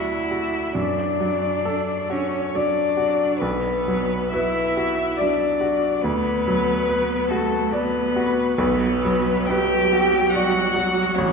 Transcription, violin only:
0.00 0.75 E5 medium
0.76 2.12 D5 medium
2.11 2.57 C#5 medium
2.56 3.40 D5 medium
3.38 4.30 B4 medium
4.30 5.19 E5 medium
5.17 6.03 D5 medium
6.02 7.30 B4 medium
7.29 7.73 A4 medium
7.71 8.56 B4 medium
8.57 9.48 B4 medium
9.46 10.32 G5 medium
10.30 11.17 F#5 medium
11.15 11.33 C#5 medium

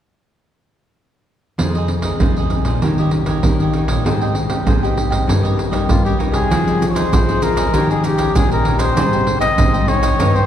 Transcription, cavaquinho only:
1.59 1.73 F4 soft
1.59 1.73 G#4 soft
1.59 1.74 C5 soft
1.59 1.74 D#5 soft
1.75 1.89 G#4 medium
1.75 1.89 C5 medium
1.75 1.89 D#5 medium
1.90 muted cavaquinho stroke soft
2.03 2.19 G#4 soft
2.03 2.19 C5 soft
2.03 2.18 D#5 soft
2.21 2.35 F4 medium
2.21 2.35 G#4 medium
2.21 2.35 C5 medium
2.21 2.36 D#5 medium
2.37 2.67 G#4 medium
2.37 2.66 C5 medium
2.37 2.65 D#5 medium
2.66 2.82 G#4 soft
2.66 2.81 C5 medium
2.66 2.80 D#5 medium
2.83 2.97 D#4 soft
2.83 2.97 G4 soft
2.83 2.97 C#5 soft
2.83 2.98 D#5 medium
2.99 3.12 G4 soft
2.99 3.12 C#5 medium
2.99 3.12 D#5 medium
3.13 muted cavaquinho stroke soft
3.27 3.58 G4 soft
3.27 3.58 C#5 medium
3.27 3.57 D#5 medium
3.60 3.74 G4 soft
3.60 3.74 C#5 medium
3.60 3.74 D#5 medium
3.74 3.88 D#4 soft
3.74 3.89 G4 soft
3.74 3.88 C#5 soft
3.74 3.87 D#5 soft
3.88 4.04 G4 medium
3.88 4.04 C#5 medium
3.88 4.03 D#5 medium
4.05 4.19 G#4 soft
4.05 4.20 C5 soft
4.05 4.20 D#5 soft
4.05 4.20 G5 soft
4.21 4.35 C5 medium
4.21 4.35 D#5 medium
4.21 4.35 G5 medium
4.36 muted cavaquinho stroke soft
4.50 4.66 C5 soft
4.50 4.66 D#5 soft
4.50 4.65 G5 soft
4.67 4.81 G#4 medium
4.67 4.81 C5 medium
4.67 4.82 D#5 medium
4.67 4.81 G5 medium
4.83 5.12 C5 medium
4.83 5.10 D#5 medium
4.83 5.09 G5 medium
5.10 5.27 C5 soft
5.10 5.26 D#5 medium
5.10 5.26 G5 medium
5.28 5.42 D#4 soft
5.28 5.42 G4 soft
5.28 5.42 C#5 soft
5.28 5.42 D#5 medium
5.43 5.57 G4 soft
5.43 5.57 C#5 medium
5.43 5.57 D#5 medium
5.57 muted cavaquinho stroke soft
5.72 6.03 G4 medium
5.72 6.03 C#5 medium
5.72 6.02 D#5 medium
6.05 6.18 G4 medium
6.05 6.19 C#5 medium
6.05 6.19 D#5 medium
6.19 6.33 D#4 soft
6.19 6.34 G4 soft
6.19 6.32 C#5 soft
6.19 6.31 D#5 soft
6.32 6.49 G4 soft
6.32 6.49 C#5 medium
6.32 6.48 D#5 medium
6.50 6.65 F4 medium
6.50 6.65 G#4 medium
6.50 6.66 C5 medium
6.50 6.66 D#5 medium
6.67 6.79 G#4 soft
6.67 6.80 C5 soft
6.67 6.80 D#5 soft
6.80 muted cavaquinho stroke soft
6.95 7.26 G#4 soft
6.95 7.26 C5 medium
6.95 7.25 D#5 medium
7.28 7.42 G#4 soft
7.28 7.42 C5 soft
7.28 7.42 D#5 soft
7.42 7.57 F4 soft
7.42 7.57 G#4 soft
7.42 7.57 C5 medium
7.42 7.55 D#5 soft
7.57 7.73 G#4 medium
7.57 7.72 C5 medium
7.57 7.72 D#5 medium
7.74 7.88 D#4 medium
7.74 7.88 G4 medium
7.74 7.89 C#5 medium
7.74 7.89 D#5 medium
7.91 8.04 G4 soft
7.91 8.05 C#5 soft
7.91 8.04 D#5 soft
8.05 muted cavaquinho stroke soft
8.17 8.49 G4 soft
8.17 8.49 C#5 medium
8.17 8.48 D#5 medium
8.52 8.65 G4 soft
8.52 8.65 C#5 soft
8.52 8.65 D#5 soft
8.65 8.79 D#4 soft
8.65 8.80 G4 soft
8.65 8.80 C#5 soft
8.65 8.79 D#5 soft
8.80 8.96 G4 medium
8.80 8.95 C#5 medium
8.80 8.94 D#5 medium
8.97 9.11 G#4 medium
8.97 9.11 C5 medium
8.97 9.12 D#5 medium
8.97 9.12 G5 medium
9.13 9.26 C5 soft
9.13 9.26 D#5 soft
9.13 9.26 G5 soft
9.27 muted cavaquinho stroke soft
9.40 9.72 C5 medium
9.40 9.71 D#5 medium
9.40 9.71 G5 medium
9.73 9.88 C5 soft
9.73 9.88 D#5 soft
9.73 9.87 G5 medium
9.88 10.02 G#4 soft
9.88 10.03 C5 soft
9.88 10.02 D#5 soft
9.88 10.01 G5 medium
10.02 10.18 C5 soft
10.02 10.18 D#5 medium
10.02 10.17 G5 medium
10.19 10.33 D#4 medium
10.19 10.34 G4 medium
10.19 10.34 C#5 medium
10.19 10.34 D#5 medium
10.35 10.46 G4 soft
10.35 10.46 C#5 soft
10.35 10.46 D#5 soft

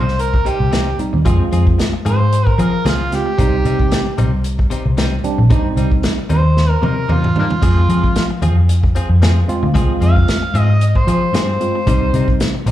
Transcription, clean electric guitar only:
0.07 muted clean electric guitar stroke soft
0.33 muted clean electric guitar stroke soft
0.45 0.60 C3 medium
0.45 0.59 G3 medium
0.45 0.59 C4 medium
0.45 0.59 D#4 medium
0.60 muted clean electric guitar stroke soft
0.71 0.89 C3 medium
0.71 0.89 G3 medium
0.71 0.90 C4 medium
0.71 0.90 D#4 medium
0.99 muted clean electric guitar stroke soft
1.13 muted clean electric guitar stroke medium
1.25 1.42 F3 medium
1.25 1.43 C4 medium
1.25 1.43 F4 medium
1.25 1.43 G#4 medium
1.52 1.67 F3 medium
1.52 1.66 C4 medium
1.52 1.66 F4 medium
1.52 1.65 G#4 medium
1.66 muted clean electric guitar stroke soft
1.78 muted clean electric guitar stroke soft
1.93 muted clean electric guitar stroke soft
2.05 2.20 F3 medium
2.05 2.20 C4 medium
2.05 2.19 F4 medium
2.05 2.19 G#4 medium
2.20 muted clean electric guitar stroke soft
2.46 muted clean electric guitar stroke soft
2.58 2.73 F3 medium
2.58 2.72 C4 medium
2.58 2.72 F4 medium
2.58 2.72 G#4 medium
2.73 muted clean electric guitar stroke soft
2.85 3.02 F3 medium
2.85 3.02 C4 medium
2.85 3.02 F4 medium
2.85 3.03 G#4 medium
3.11 muted clean electric guitar stroke soft
3.26 muted clean electric guitar stroke soft
3.38 3.55 C3 medium
3.38 3.55 G3 medium
3.38 3.56 C4 medium
3.38 3.56 D#4 medium
3.65 3.79 C3 medium
3.65 3.80 G3 medium
3.65 3.79 C4 medium
3.65 3.79 D#4 medium
3.80 muted clean electric guitar stroke soft
3.91 muted clean electric guitar stroke soft
4.06 muted clean electric guitar stroke soft
4.18 4.33 C3 medium
4.18 4.32 G3 medium
4.18 4.32 C4 medium
4.18 4.31 D#4 medium
4.59 muted clean electric guitar stroke soft
4.70 4.85 C3 medium
4.70 4.85 G3 medium
4.70 4.85 C4 medium
4.70 4.84 D#4 medium
4.86 muted clean electric guitar stroke soft
4.97 5.14 C3 medium
4.97 5.15 G3 medium
4.97 5.15 C4 medium
4.97 5.15 D#4 medium
5.24 muted clean electric guitar stroke soft
5.38 muted clean electric guitar stroke soft
5.50 5.67 C3 medium
5.50 5.68 G3 loud
5.50 5.68 C4 medium
5.50 5.68 D#4 medium
5.76 5.91 C3 medium
5.76 5.92 G3 medium
5.76 5.91 C4 medium
5.76 5.91 D#4 medium
5.92 muted clean electric guitar stroke soft
6.03 muted clean electric guitar stroke soft
6.18 muted clean electric guitar stroke soft
6.29 6.45 C3 medium
6.29 6.44 G3 medium
6.29 6.43 C4 medium
6.29 6.43 D#4 medium
6.44 muted clean electric guitar stroke soft
6.70 muted clean electric guitar stroke soft
6.82 6.97 C3 medium
6.82 6.96 G3 medium
6.82 6.96 C4 medium
6.82 6.95 D#4 medium
6.96 muted clean electric guitar stroke soft
7.08 7.26 C3 medium
7.08 7.27 G3 medium
7.08 7.27 C4 medium
7.08 7.27 D#4 medium
7.35 muted clean electric guitar stroke soft
7.50 muted clean electric guitar stroke soft
7.62 7.79 F3 medium
7.62 7.80 C4 medium
7.62 7.80 F4 medium
7.62 7.80 G#4 medium
7.89 8.04 F3 medium
7.89 8.03 C4 medium
7.89 8.03 F4 medium
7.89 8.02 G#4 medium
8.03 muted clean electric guitar stroke medium
8.15 muted clean electric guitar stroke soft
8.31 muted clean electric guitar stroke soft
8.42 8.57 F3 medium
8.42 8.57 C4 medium
8.42 8.56 F4 medium
8.42 8.56 G#4 medium
8.57 muted clean electric guitar stroke soft
8.84 muted clean electric guitar stroke soft
8.95 9.10 F3 medium
8.95 9.09 C4 medium
8.95 9.09 F4 medium
8.95 9.09 G#4 medium
9.10 muted clean electric guitar stroke soft
9.22 9.39 F3 medium
9.22 9.39 C4 medium
9.22 9.40 F4 medium
9.22 9.40 G#4 medium
9.49 muted clean electric guitar stroke soft
9.63 muted clean electric guitar stroke medium
9.74 9.92 F3 medium
9.74 9.92 C4 medium
9.74 9.92 F4 loud
9.74 9.92 G#4 loud
10.00 10.16 F3 medium
10.00 10.16 C4 medium
10.00 10.15 F4 medium
10.00 10.15 G#4 medium
10.16 muted clean electric guitar stroke soft
10.28 muted clean electric guitar stroke soft
10.42 muted clean electric guitar stroke soft
10.54 10.69 F3 medium
10.54 10.69 C4 medium
10.54 10.69 F4 medium
10.54 10.68 G#4 medium
10.70 muted clean electric guitar stroke soft
10.96 muted clean electric guitar stroke soft
11.08 11.22 F3 medium
11.08 11.22 C4 medium
11.08 11.21 F4 medium
11.08 11.21 G#4 medium
11.22 muted clean electric guitar stroke soft
11.34 11.51 F3 medium
11.34 11.51 C4 medium
11.34 11.51 F4 medium
11.34 11.52 G#4 medium
11.61 muted clean electric guitar stroke soft
11.75 muted clean electric guitar stroke soft
11.87 12.04 C3 medium
11.87 12.05 G3 medium
11.87 12.05 C4 medium
11.87 12.05 D#4 medium
12.14 12.28 C3 medium
12.14 12.28 G3 medium
12.14 12.28 C4 medium
12.14 12.28 D#4 medium
12.40 muted clean electric guitar stroke soft
12.55 muted clean electric guitar stroke soft
12.66 12.71 C3 medium
12.66 12.71 G3 medium
12.66 12.71 C4 medium
12.66 12.71 D#4 medium

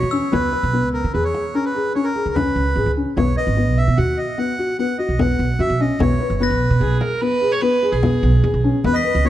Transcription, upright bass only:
0.03 0.20 E2 medium
0.33 0.51 C#2 medium
0.63 0.84 B1 medium
0.84 1.01 C#2 medium
1.04 1.13 C#3 medium
1.15 1.32 E2 medium
2.26 2.52 C#2 medium
2.56 2.73 C#2 medium
2.76 2.85 G#1 medium
2.86 3.03 C#2 medium
3.17 3.34 B1 medium
3.47 3.68 G#1 medium
3.67 3.85 B1 medium
3.88 3.96 B2 medium
3.98 4.15 D#2 medium
5.09 5.35 B1 medium
5.39 5.57 B1 medium
5.59 5.68 F#2 medium
5.70 5.87 B1 medium
5.99 6.17 B1 medium
6.30 6.52 F#1 medium
6.50 6.68 B1 medium
6.70 6.79 B2 medium
6.81 6.98 B1 medium
7.92 8.19 B1 medium
8.23 8.41 B1 medium
8.44 8.52 D#2 medium
8.54 8.71 B1 medium
8.84 9.02 E2 medium
9.15 9.29 C#2 medium

